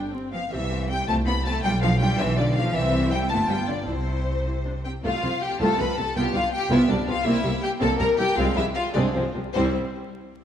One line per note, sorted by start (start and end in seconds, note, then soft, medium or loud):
0.00 0.32 G1 loud
0.00 0.12 D4 medium
0.14 0.33 C4 medium
0.32 0.40 F3 medium
0.32 0.40 B3 medium
0.32 0.50 F5 loud
0.32 0.50 F5 medium
0.51 1.01 C2 loud
0.51 0.88 E3 medium
0.51 0.59 C4 medium
0.51 0.59 G4 medium
0.51 0.88 E5 loud
0.51 0.89 E5 medium
0.70 0.78 C4 medium
0.70 0.78 G4 medium
0.88 1.07 G3 loud
0.88 0.97 C4 medium
0.88 0.97 G4 medium
0.88 1.07 G5 loud
1.07 1.57 C2 loud
1.07 1.15 A3 loud
1.07 1.16 C4 medium
1.07 1.16 F4 medium
1.07 1.15 A5 loud
1.26 1.33 B3 loud
1.26 1.35 C4 medium
1.26 1.34 F4 medium
1.26 1.45 B5 loud
1.26 1.34 B5 loud
1.45 1.63 A3 loud
1.45 1.54 C4 medium
1.45 1.53 F4 medium
1.45 1.63 A5 loud
1.45 1.53 A5 loud
1.63 2.13 B1 loud
1.63 1.71 G3 loud
1.63 1.72 D4 loud
1.63 1.72 F4 loud
1.63 1.81 G5 loud
1.63 1.71 G5 loud
1.81 1.89 F3 loud
1.81 1.91 D4 medium
1.81 1.90 F4 medium
1.81 2.00 F5 loud
1.81 1.90 F5 loud
2.00 2.19 G3 loud
2.00 2.09 D4 medium
2.00 2.08 F4 medium
2.00 2.18 G5 loud
2.00 2.08 G5 loud
2.18 2.68 B1 loud
2.18 2.37 E3 loud
2.18 2.27 D4 loud
2.18 2.27 F4 loud
2.18 2.37 E5 loud
2.18 2.27 E5 loud
2.36 2.56 D3 loud
2.36 2.45 D4 medium
2.36 2.45 F4 loud
2.36 2.55 D5 loud
2.36 2.56 D5 loud
2.55 2.74 F3 loud
2.55 2.64 D4 medium
2.55 2.64 F4 medium
2.55 2.74 F5 loud
2.55 2.64 F5 loud
2.74 3.26 C2 loud
2.74 3.11 E3 loud
2.74 3.27 C4 loud
2.74 3.26 E4 loud
2.74 3.11 E5 loud
3.10 3.30 G3 loud
3.10 3.18 G5 loud
3.10 3.30 G5 loud
3.29 3.86 G1 medium
3.29 3.38 A3 loud
3.29 3.86 B3 loud
3.29 3.87 F4 loud
3.29 3.37 A5 loud
3.29 3.49 A5 loud
3.49 3.57 G3 medium
3.49 3.68 G5 loud
3.49 3.69 G5 loud
3.68 3.76 D3 medium
3.68 3.87 D5 loud
3.68 3.77 D5 medium
3.87 4.84 C2 medium
3.87 4.83 C3 medium
3.87 4.41 C4 medium
3.87 4.40 E4 medium
3.87 4.84 C5 loud
3.87 4.83 C5 medium
4.46 4.53 E4 medium
4.65 4.73 D4 medium
4.84 4.92 C4 medium
4.84 4.92 G4 medium
4.84 4.92 G5 medium
5.03 5.11 C2 loud
5.03 5.12 C2 loud
5.03 5.21 A3 medium
5.03 5.21 F4 loud
5.03 5.41 F4 loud
5.03 5.41 F5 loud
5.22 5.30 C2 medium
5.22 5.31 C2 medium
5.22 5.31 F3 medium
5.22 5.31 C4 medium
5.42 5.60 G4 loud
5.42 5.60 G5 loud
5.60 5.67 C2 loud
5.60 5.68 C2 loud
5.60 5.78 A3 loud
5.60 5.78 F4 loud
5.60 5.79 A4 loud
5.60 5.78 A5 loud
5.79 5.86 C2 medium
5.79 5.87 F3 medium
5.79 5.87 C4 medium
5.79 5.98 B4 loud
5.79 5.97 B5 loud
5.97 6.05 C2 medium
5.97 6.05 C3 medium
5.97 6.05 A3 medium
5.97 6.16 A4 loud
5.97 6.15 A5 loud
6.15 6.23 C2 loud
6.15 6.33 B3 loud
6.15 6.33 F4 loud
6.15 6.34 G4 loud
6.15 6.23 G5 loud
6.34 6.41 C2 medium
6.34 6.41 G3 medium
6.34 6.41 D4 medium
6.34 6.53 F4 loud
6.34 6.52 F5 loud
6.52 6.71 G4 loud
6.52 6.70 G5 loud
6.70 6.77 C2 loud
6.70 6.78 C2 loud
6.70 6.87 B3 loud
6.70 6.79 E4 loud
6.70 6.87 F4 loud
6.70 6.90 E5 loud
6.88 6.96 C2 medium
6.88 6.95 G3 medium
6.88 6.95 D4 medium
6.88 7.07 D4 medium
6.88 7.07 D5 loud
7.06 7.14 C2 medium
7.06 7.14 F3 loud
7.06 7.14 B3 medium
7.06 7.25 F4 loud
7.06 7.25 F5 loud
7.25 7.32 C2 loud
7.25 7.33 C2 loud
7.25 7.42 A#3 loud
7.25 7.42 C4 loud
7.25 7.62 E4 loud
7.25 7.63 E5 loud
7.43 7.51 C2 medium
7.43 7.52 C2 medium
7.43 7.51 G3 medium
7.43 7.51 A#3 medium
7.62 7.70 G4 loud
7.62 7.70 G5 loud
7.81 7.88 C2 loud
7.81 7.89 C2 loud
7.81 7.98 A#3 loud
7.81 7.98 C4 loud
7.81 7.99 A4 loud
7.81 7.89 A5 loud
7.98 8.07 C2 medium
7.98 8.08 C2 medium
7.98 8.06 G3 loud
7.98 8.07 A#3 medium
7.98 8.17 A#4 loud
7.98 8.07 A#5 loud
8.18 8.26 C2 medium
8.18 8.26 E3 medium
8.18 8.26 G3 loud
8.18 8.37 G4 loud
8.18 8.37 G5 loud
8.36 8.45 C2 loud
8.36 8.55 G#3 loud
8.36 8.55 C4 loud
8.36 8.44 F4 loud
8.36 8.56 F5 loud
8.55 8.64 C2 medium
8.55 8.65 C2 medium
8.55 8.64 F3 medium
8.55 8.64 G#3 loud
8.55 8.63 E4 loud
8.55 8.64 E5 loud
8.75 8.95 F4 loud
8.75 8.83 F5 loud
8.94 9.03 C2 loud
8.94 9.04 C2 loud
8.94 9.14 G#3 loud
8.94 9.14 C4 loud
8.94 9.14 D4 loud
8.94 9.02 D5 loud
9.13 9.23 C2 medium
9.13 9.24 C2 medium
9.13 9.23 F3 medium
9.13 9.23 G#3 loud
9.13 9.36 C4 medium
9.13 9.34 C5 medium
9.35 9.43 C2 medium
9.35 9.44 C2 medium
9.35 9.43 C3 medium
9.35 9.43 F3 medium
9.53 9.76 C2 loud
9.53 9.77 C2 loud
9.53 9.76 G3 loud
9.53 9.77 C4 loud
9.53 9.76 E4 loud
9.53 9.75 C5 loud